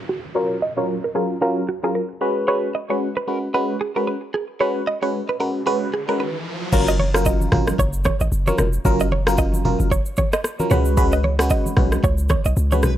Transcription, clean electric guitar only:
0, 0, Header, 1, 2, 480
1, 0, Start_track
1, 0, Key_signature, 6, "major"
1, 0, Tempo, 530973
1, 321, Time_signature, 4, 2, 24, 8
1, 11732, End_track
2, 0, Start_track
2, 0, Title_t, "Clean electric guitar"
2, 0, Program_c, 0, 27
2, 83, Note_on_c, 0, 66, 78
2, 170, Note_off_c, 0, 66, 0
2, 325, Note_on_c, 0, 73, 77
2, 412, Note_off_c, 0, 73, 0
2, 563, Note_on_c, 0, 75, 71
2, 650, Note_off_c, 0, 75, 0
2, 703, Note_on_c, 0, 73, 69
2, 766, Note_off_c, 0, 73, 0
2, 943, Note_on_c, 0, 70, 60
2, 1005, Note_off_c, 0, 70, 0
2, 1045, Note_on_c, 0, 68, 79
2, 1132, Note_off_c, 0, 68, 0
2, 1285, Note_on_c, 0, 70, 80
2, 1372, Note_off_c, 0, 70, 0
2, 1524, Note_on_c, 0, 66, 73
2, 1611, Note_off_c, 0, 66, 0
2, 1664, Note_on_c, 0, 68, 88
2, 1727, Note_off_c, 0, 68, 0
2, 1764, Note_on_c, 0, 70, 78
2, 1915, Note_off_c, 0, 70, 0
2, 2244, Note_on_c, 0, 73, 81
2, 2331, Note_off_c, 0, 73, 0
2, 2484, Note_on_c, 0, 75, 69
2, 2571, Note_off_c, 0, 75, 0
2, 2625, Note_on_c, 0, 73, 71
2, 2687, Note_off_c, 0, 73, 0
2, 2863, Note_on_c, 0, 71, 82
2, 2963, Note_off_c, 0, 71, 0
2, 2963, Note_on_c, 0, 70, 76
2, 3050, Note_off_c, 0, 70, 0
2, 3204, Note_on_c, 0, 71, 80
2, 3291, Note_off_c, 0, 71, 0
2, 3442, Note_on_c, 0, 68, 74
2, 3530, Note_off_c, 0, 68, 0
2, 3582, Note_on_c, 0, 70, 77
2, 3645, Note_off_c, 0, 70, 0
2, 3683, Note_on_c, 0, 71, 77
2, 3770, Note_off_c, 0, 71, 0
2, 3925, Note_on_c, 0, 68, 75
2, 4011, Note_off_c, 0, 68, 0
2, 4163, Note_on_c, 0, 73, 80
2, 4250, Note_off_c, 0, 73, 0
2, 4405, Note_on_c, 0, 75, 76
2, 4492, Note_off_c, 0, 75, 0
2, 4544, Note_on_c, 0, 73, 72
2, 4606, Note_off_c, 0, 73, 0
2, 4784, Note_on_c, 0, 71, 65
2, 4846, Note_off_c, 0, 71, 0
2, 4885, Note_on_c, 0, 70, 77
2, 4972, Note_off_c, 0, 70, 0
2, 5126, Note_on_c, 0, 71, 85
2, 5212, Note_off_c, 0, 71, 0
2, 5366, Note_on_c, 0, 68, 75
2, 5452, Note_off_c, 0, 68, 0
2, 5504, Note_on_c, 0, 70, 85
2, 5566, Note_off_c, 0, 70, 0
2, 5606, Note_on_c, 0, 71, 77
2, 5756, Note_off_c, 0, 71, 0
2, 6224, Note_on_c, 0, 75, 68
2, 6286, Note_off_c, 0, 75, 0
2, 6324, Note_on_c, 0, 73, 85
2, 6411, Note_off_c, 0, 73, 0
2, 6565, Note_on_c, 0, 75, 81
2, 6715, Note_off_c, 0, 75, 0
2, 7046, Note_on_c, 0, 73, 83
2, 7132, Note_off_c, 0, 73, 0
2, 7285, Note_on_c, 0, 73, 77
2, 7371, Note_off_c, 0, 73, 0
2, 7424, Note_on_c, 0, 75, 76
2, 7486, Note_off_c, 0, 75, 0
2, 7662, Note_on_c, 0, 73, 76
2, 7725, Note_off_c, 0, 73, 0
2, 7765, Note_on_c, 0, 70, 80
2, 7852, Note_off_c, 0, 70, 0
2, 8144, Note_on_c, 0, 75, 69
2, 8206, Note_off_c, 0, 75, 0
2, 8245, Note_on_c, 0, 73, 81
2, 8332, Note_off_c, 0, 73, 0
2, 8484, Note_on_c, 0, 75, 82
2, 8634, Note_off_c, 0, 75, 0
2, 8963, Note_on_c, 0, 73, 85
2, 9050, Note_off_c, 0, 73, 0
2, 9205, Note_on_c, 0, 73, 78
2, 9291, Note_off_c, 0, 73, 0
2, 9342, Note_on_c, 0, 75, 79
2, 9405, Note_off_c, 0, 75, 0
2, 9684, Note_on_c, 0, 73, 73
2, 9771, Note_off_c, 0, 73, 0
2, 10062, Note_on_c, 0, 75, 71
2, 10125, Note_off_c, 0, 75, 0
2, 10162, Note_on_c, 0, 73, 83
2, 10250, Note_off_c, 0, 73, 0
2, 10403, Note_on_c, 0, 75, 81
2, 10554, Note_off_c, 0, 75, 0
2, 10884, Note_on_c, 0, 73, 80
2, 10971, Note_off_c, 0, 73, 0
2, 11124, Note_on_c, 0, 73, 78
2, 11211, Note_off_c, 0, 73, 0
2, 11263, Note_on_c, 0, 75, 73
2, 11325, Note_off_c, 0, 75, 0
2, 11502, Note_on_c, 0, 73, 72
2, 11602, Note_off_c, 0, 73, 0
2, 11602, Note_on_c, 0, 71, 83
2, 11689, Note_off_c, 0, 71, 0
2, 11732, End_track
0, 0, End_of_file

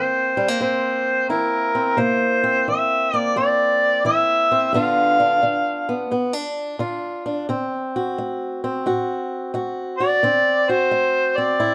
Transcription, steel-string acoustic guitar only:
0, 0, Header, 1, 2, 480
1, 0, Start_track
1, 0, Tempo, 687285
1, 1380, Time_signature, 4, 2, 24, 8
1, 8203, End_track
2, 0, Start_track
2, 0, Title_t, "Steel-string acoustic guitar"
2, 0, Program_c, 0, 25
2, 0, Note_on_c, 0, 52, 58
2, 0, Note_on_c, 0, 58, 56
2, 0, Note_on_c, 0, 60, 55
2, 256, Note_off_c, 0, 58, 0
2, 259, Note_on_c, 0, 55, 57
2, 337, Note_off_c, 0, 55, 0
2, 337, Note_on_c, 0, 58, 44
2, 388, Note_off_c, 0, 52, 0
2, 422, Note_on_c, 0, 43, 57
2, 426, Note_off_c, 0, 60, 0
2, 429, Note_on_c, 0, 60, 58
2, 869, Note_off_c, 0, 43, 0
2, 905, Note_on_c, 0, 52, 58
2, 908, Note_on_c, 0, 64, 62
2, 1213, Note_off_c, 0, 60, 0
2, 1222, Note_on_c, 0, 60, 52
2, 1350, Note_off_c, 0, 52, 0
2, 1362, Note_off_c, 0, 60, 0
2, 1370, Note_off_c, 0, 58, 0
2, 1376, Note_on_c, 0, 48, 69
2, 1381, Note_on_c, 0, 58, 60
2, 1701, Note_on_c, 0, 60, 55
2, 1826, Note_off_c, 0, 48, 0
2, 1871, Note_on_c, 0, 52, 58
2, 2178, Note_off_c, 0, 58, 0
2, 2190, Note_on_c, 0, 58, 57
2, 2313, Note_off_c, 0, 52, 0
2, 2341, Note_off_c, 0, 60, 0
2, 2347, Note_on_c, 0, 43, 60
2, 2351, Note_on_c, 0, 60, 56
2, 2792, Note_off_c, 0, 43, 0
2, 2824, Note_off_c, 0, 64, 0
2, 2827, Note_on_c, 0, 52, 59
2, 2833, Note_on_c, 0, 64, 60
2, 3144, Note_off_c, 0, 60, 0
2, 3154, Note_on_c, 0, 60, 55
2, 3272, Note_off_c, 0, 52, 0
2, 3287, Note_off_c, 0, 58, 0
2, 3288, Note_off_c, 0, 60, 0
2, 3301, Note_on_c, 0, 43, 70
2, 3307, Note_off_c, 0, 64, 0
2, 3312, Note_on_c, 0, 50, 59
2, 3314, Note_on_c, 0, 59, 58
2, 3320, Note_on_c, 0, 62, 58
2, 3325, Note_on_c, 0, 65, 66
2, 3629, Note_off_c, 0, 62, 0
2, 3632, Note_on_c, 0, 62, 55
2, 3749, Note_off_c, 0, 43, 0
2, 3783, Note_off_c, 0, 50, 0
2, 3792, Note_on_c, 0, 50, 63
2, 4104, Note_off_c, 0, 59, 0
2, 4112, Note_on_c, 0, 59, 56
2, 4234, Note_off_c, 0, 50, 0
2, 4261, Note_off_c, 0, 59, 0
2, 4269, Note_off_c, 0, 62, 0
2, 4269, Note_on_c, 0, 43, 61
2, 4272, Note_on_c, 0, 59, 58
2, 4422, Note_off_c, 0, 59, 0
2, 4422, Note_on_c, 0, 62, 47
2, 4713, Note_off_c, 0, 43, 0
2, 4742, Note_off_c, 0, 65, 0
2, 4744, Note_on_c, 0, 50, 60
2, 4750, Note_on_c, 0, 65, 64
2, 5061, Note_off_c, 0, 62, 0
2, 5068, Note_on_c, 0, 62, 54
2, 5191, Note_off_c, 0, 50, 0
2, 5206, Note_off_c, 0, 65, 0
2, 5230, Note_on_c, 0, 50, 72
2, 5232, Note_off_c, 0, 62, 0
2, 5235, Note_on_c, 0, 60, 54
2, 5559, Note_on_c, 0, 66, 61
2, 5674, Note_off_c, 0, 50, 0
2, 5715, Note_on_c, 0, 57, 61
2, 6031, Note_off_c, 0, 60, 0
2, 6033, Note_on_c, 0, 60, 55
2, 6156, Note_off_c, 0, 57, 0
2, 6187, Note_on_c, 0, 45, 57
2, 6189, Note_off_c, 0, 66, 0
2, 6192, Note_on_c, 0, 66, 60
2, 6633, Note_off_c, 0, 45, 0
2, 6659, Note_off_c, 0, 66, 0
2, 6662, Note_on_c, 0, 57, 58
2, 6667, Note_on_c, 0, 66, 58
2, 6978, Note_off_c, 0, 66, 0
2, 6986, Note_on_c, 0, 66, 59
2, 7110, Note_off_c, 0, 57, 0
2, 7126, Note_off_c, 0, 66, 0
2, 7144, Note_on_c, 0, 50, 65
2, 7147, Note_off_c, 0, 60, 0
2, 7150, Note_on_c, 0, 60, 58
2, 7468, Note_on_c, 0, 66, 57
2, 7592, Note_off_c, 0, 50, 0
2, 7622, Note_on_c, 0, 57, 62
2, 7944, Note_off_c, 0, 60, 0
2, 7947, Note_on_c, 0, 60, 55
2, 8071, Note_off_c, 0, 57, 0
2, 8098, Note_off_c, 0, 66, 0
2, 8099, Note_on_c, 0, 45, 55
2, 8101, Note_on_c, 0, 64, 61
2, 8203, Note_off_c, 0, 45, 0
2, 8203, Note_off_c, 0, 60, 0
2, 8203, Note_off_c, 0, 64, 0
2, 8203, End_track
0, 0, End_of_file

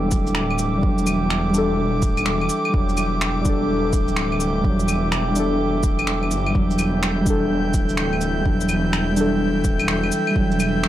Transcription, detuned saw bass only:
0, 0, Header, 1, 2, 480
1, 0, Start_track
1, 0, Key_signature, 1, "minor"
1, 0, Tempo, 476190
1, 839, Time_signature, 4, 2, 24, 8
1, 10969, End_track
2, 0, Start_track
2, 0, Title_t, "Detuned saw bass"
2, 0, Program_c, 0, 39
2, 0, Note_on_c, 0, 28, 96
2, 108, Note_off_c, 0, 28, 0
2, 118, Note_on_c, 0, 26, 103
2, 828, Note_off_c, 0, 26, 0
2, 838, Note_on_c, 0, 28, 95
2, 2028, Note_off_c, 0, 28, 0
2, 2039, Note_on_c, 0, 26, 95
2, 2195, Note_on_c, 0, 28, 90
2, 2211, Note_off_c, 0, 26, 0
2, 2509, Note_off_c, 0, 28, 0
2, 2763, Note_on_c, 0, 28, 95
2, 3950, Note_off_c, 0, 28, 0
2, 3963, Note_on_c, 0, 26, 105
2, 4670, Note_off_c, 0, 26, 0
2, 4683, Note_on_c, 0, 28, 100
2, 5870, Note_off_c, 0, 28, 0
2, 5883, Note_on_c, 0, 26, 95
2, 6041, Note_on_c, 0, 28, 89
2, 6056, Note_off_c, 0, 26, 0
2, 6362, Note_on_c, 0, 31, 83
2, 6377, Note_off_c, 0, 28, 0
2, 6587, Note_off_c, 0, 31, 0
2, 6604, Note_on_c, 0, 28, 96
2, 7791, Note_off_c, 0, 28, 0
2, 7803, Note_on_c, 0, 26, 103
2, 8510, Note_off_c, 0, 26, 0
2, 8524, Note_on_c, 0, 28, 98
2, 9711, Note_off_c, 0, 28, 0
2, 9723, Note_on_c, 0, 26, 97
2, 9876, Note_on_c, 0, 28, 88
2, 9891, Note_off_c, 0, 26, 0
2, 10189, Note_off_c, 0, 28, 0
2, 10442, Note_on_c, 0, 28, 99
2, 10969, Note_off_c, 0, 28, 0
2, 10969, End_track
0, 0, End_of_file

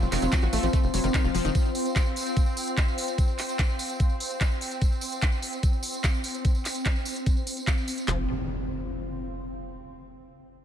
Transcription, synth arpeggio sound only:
0, 0, Header, 1, 2, 480
1, 0, Start_track
1, 0, Tempo, 408163
1, 1823, Time_signature, 4, 2, 24, 8
1, 12521, End_track
2, 0, Start_track
2, 0, Title_t, "Synth arpeggio sound"
2, 0, Program_c, 0, 84
2, 142, Note_on_c, 0, 51, 105
2, 223, Note_off_c, 0, 51, 0
2, 262, Note_on_c, 0, 54, 70
2, 311, Note_off_c, 0, 54, 0
2, 382, Note_on_c, 0, 54, 97
2, 463, Note_off_c, 0, 54, 0
2, 502, Note_on_c, 0, 66, 77
2, 583, Note_off_c, 0, 66, 0
2, 622, Note_on_c, 0, 57, 101
2, 736, Note_off_c, 0, 57, 0
2, 742, Note_on_c, 0, 53, 74
2, 791, Note_off_c, 0, 53, 0
2, 862, Note_on_c, 0, 57, 82
2, 943, Note_off_c, 0, 57, 0
2, 1102, Note_on_c, 0, 54, 82
2, 1183, Note_off_c, 0, 54, 0
2, 1222, Note_on_c, 0, 51, 80
2, 1271, Note_off_c, 0, 51, 0
2, 1342, Note_on_c, 0, 51, 102
2, 1423, Note_off_c, 0, 51, 0
2, 1462, Note_on_c, 0, 53, 75
2, 1568, Note_off_c, 0, 53, 0
2, 1582, Note_on_c, 0, 53, 105
2, 1696, Note_off_c, 0, 53, 0
2, 1702, Note_on_c, 0, 51, 98
2, 1751, Note_off_c, 0, 51, 0
2, 9503, Note_on_c, 0, 53, 97
2, 9726, Note_off_c, 0, 53, 0
2, 12521, End_track
0, 0, End_of_file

